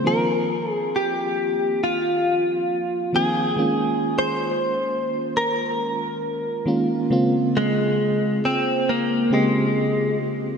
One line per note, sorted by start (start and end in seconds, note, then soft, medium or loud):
0.04 1.69 D#3 medium
0.04 1.69 F3 medium
0.04 1.70 A#3 medium
0.04 1.70 C4 medium
0.04 1.70 F4 medium
0.04 0.71 A#4 loud
0.71 0.97 G#4 loud
0.96 1.83 G4 medium
1.84 3.19 F4 medium
3.13 3.54 D#3 medium
3.13 3.55 F3 medium
3.13 3.55 A#3 medium
3.13 3.55 C4 medium
3.13 3.56 F4 medium
3.13 4.18 G#4 medium
3.56 5.22 D#3 medium
3.56 5.22 G#3 medium
3.56 5.22 A#3 medium
3.56 5.23 C#4 medium
3.56 5.23 F4 medium
4.19 5.36 C5 medium
5.37 6.64 A#4 medium
6.66 7.07 D#3 medium
6.66 7.08 G#3 medium
6.66 7.08 A#3 medium
6.66 7.08 C#4 medium
6.66 7.08 F4 medium
7.10 8.75 C#3 medium
7.10 8.75 G#3 medium
7.10 8.75 A#3 medium
7.10 8.76 C4 medium
7.10 8.76 F4 loud
7.57 8.40 G#3 medium
8.45 8.90 C4 loud
8.89 9.33 A#3 loud
9.30 10.54 C#3 medium
9.30 10.54 G#3 medium
9.30 10.17 G#3 medium
9.30 10.55 A#3 medium
9.30 10.55 C4 medium
9.30 10.55 G4 medium